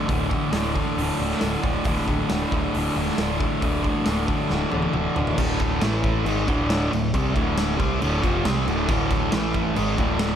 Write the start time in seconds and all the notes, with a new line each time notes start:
Already playing: D3
0.07 D1 D2 A2, kick, open hi-hat
0.12 D3
0.29 D3, kick
0.34 A2
0.52 D1 D2 A2, snare, open hi-hat
0.57 D3
0.74 D3, kick
0.79 A2
0.97 D1 D2 A2, open hi-hat
1.02 D3
1.19 D1 A2 D3
1.24 D2
1.30 snare
1.40 D1 D2 A2, snare, open hi-hat
1.45 D3
1.62 D1 D3, kick
1.67 A2
1.84 D1 D2 A2, kick, open hi-hat
1.89 D3
1.96 snare
2.07 D1 D3, kick
2.13 A2
2.29 D1 D2 A2, snare, open hi-hat
2.34 D3
2.52 D1 D3, kick
2.57 A2
2.74 D1 D2 A2, open hi-hat
2.79 D3
2.95 D1 A2 D3
3.00 D2
3.08 snare
3.17 D1 D2 A2, snare, open hi-hat
3.22 D3
3.39 D3, kick
3.44 A2
3.62 D1 D2 A2, kick, open hi-hat
3.66 D3
3.84 D3, kick
3.89 A2
4.06 D1 D2 A2, snare, open hi-hat
4.10 D3
4.27 D3, kick
4.32 A2
4.49 D1 D2 A2, snare
4.54 D3
4.71 D1 A2 D3, high tom
4.75 D2
4.82 high tom
4.92 D1 D2 A2, mid tom
4.97 D3
5.16 D1 D3, floor tom
5.21 A2
5.27 floor tom
5.38 D1 D2 A2 D3, kick, crash
5.59 kick, crash
5.81 A1 A2 E3 A3, snare, crash
6.04 kick, crash
6.25 G#1 G#2 D#3 G#3, crash
6.47 D1 D2 A2 D3, kick, crash
6.70 snare, crash
6.91 D1 D2 A2, crash
7.14 C2 C3 G3 C4, kick, crash
7.34 D1 D2 A2 D3, kick, crash
7.58 snare, crash
7.78 C2 C3 G3 C4, kick, crash
8.01 D1 D2 A2 D3, crash
8.22 F1 F2 C3 F3, kick, crash
8.44 C2 C3 G3 C4, snare, crash
8.66 D1 D2 A2 D3, crash
8.88 D1 D2 A2 D3, kick, crash
9.10 kick, crash
9.31 A1 A2 E3 A3, snare, crash
9.54 kick, crash
9.75 G#1 G#2 D#3 G#3, crash
9.97 D1 D2 A2 D3, kick, crash
10.19 snare, crash